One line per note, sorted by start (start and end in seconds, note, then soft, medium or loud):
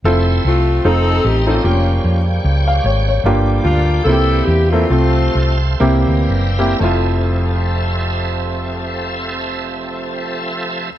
0.04 0.38 F1 medium
0.04 0.84 C3 medium
0.04 4.01 F3 medium
0.04 1.63 A3 medium
0.04 1.63 C4 medium
0.04 0.58 C4 medium
0.04 0.58 E4 medium
0.04 0.58 F4 medium
0.04 1.63 A4 medium
0.04 0.58 A4 medium
0.04 0.84 E5 medium
0.04 1.64 C6 medium
0.45 0.79 C2 medium
0.45 0.83 A3 medium
0.45 0.83 C4 soft
0.45 0.83 F4 medium
0.84 1.19 F1 medium
0.84 1.63 D#3 medium
0.84 1.34 C4 medium
0.84 1.61 C4 medium
0.84 1.34 D#4 medium
0.84 1.61 D#4 medium
0.84 1.34 F4 medium
0.84 1.34 A4 medium
0.84 1.26 A4 medium
0.84 1.65 D#5 medium
1.25 1.59 A1 medium
1.25 1.48 G4 medium
1.47 2.23 A#3 medium
1.47 1.58 C4 medium
1.47 2.23 C#4 medium
1.47 1.58 D#4 medium
1.47 1.58 F4 medium
1.47 2.23 F4 medium
1.47 1.58 A4 medium
1.63 1.98 F1 medium
1.63 3.23 C#3 medium
1.63 4.03 G3 medium
1.63 2.17 A#3 medium
1.63 4.86 A#3 medium
1.63 2.17 C#4 medium
1.63 2.17 F4 medium
1.63 2.17 G4 medium
1.63 3.23 G4 medium
1.63 3.23 C#5 soft
1.63 4.87 G5 medium
2.04 2.38 F2 medium
2.44 2.79 C#2 medium
2.68 2.84 F5 medium
2.84 3.18 G#1 medium
2.84 3.07 C#5 medium
3.09 3.46 C#5 medium
3.24 3.58 G1 medium
3.24 3.84 G2 medium
3.24 4.05 D3 medium
3.24 3.78 A#3 medium
3.24 3.78 D4 medium
3.24 3.78 F4 medium
3.24 4.88 G4 medium
3.24 3.78 G4 medium
3.64 3.99 D2 medium
3.64 4.02 A#3 medium
3.64 4.03 D4 soft
3.64 4.02 F4 medium
4.04 4.41 C2 medium
4.04 6.78 C3 medium
4.04 4.68 C3 medium
4.04 4.89 E3 medium
4.04 4.89 G3 medium
4.04 4.57 A#3 medium
4.04 4.57 C4 medium
4.04 4.86 E4 medium
4.04 4.57 E4 medium
4.04 4.12 F4 medium
4.04 4.44 A4 medium
4.04 4.89 C5 medium
4.04 4.89 E5 medium
4.12 4.60 G4 medium
4.45 4.84 E2 medium
4.45 4.70 G4 medium
4.69 5.57 A3 medium
4.69 4.84 A#3 medium
4.69 5.56 C4 medium
4.69 4.84 C4 medium
4.69 4.84 E4 medium
4.69 5.59 F4 medium
4.69 4.84 A4 medium
4.89 5.28 C2 medium
4.89 5.57 C3 medium
4.89 5.80 F3 medium
4.89 5.79 A3 medium
4.89 5.49 A3 medium
4.89 5.79 C4 medium
4.89 5.49 C4 medium
4.89 5.49 F4 medium
4.89 5.80 A4 medium
4.89 5.49 A4 medium
4.89 6.79 C5 soft
4.89 5.80 F5 medium
4.89 5.80 C6 medium
5.35 5.74 C2 medium
5.80 6.04 C2 medium
5.80 6.54 C3 medium
5.80 6.80 E3 medium
5.80 6.80 G3 medium
5.80 6.40 A#3 medium
5.80 6.80 A#3 medium
5.80 6.41 C4 medium
5.80 6.41 E4 medium
5.80 6.80 G4 medium
5.80 6.41 G4 medium
5.80 6.79 E5 medium
5.80 6.80 A#5 medium
6.07 6.26 D2 medium
6.29 6.73 F#1 medium
6.58 6.73 A#3 medium
6.58 6.73 C4 medium
6.58 6.73 E4 medium
6.58 6.73 G4 medium
6.79 10.89 F1 medium
6.79 10.90 F2 medium
6.79 10.89 C3 medium
6.79 10.89 F3 medium
6.79 10.91 F3 medium
6.79 10.88 A3 medium
6.79 10.89 A3 medium
6.79 10.89 C4 medium
6.79 10.90 C4 medium
6.79 10.91 E4 medium
6.79 10.90 A4 soft
6.79 10.90 E5 medium
6.83 10.92 F4 medium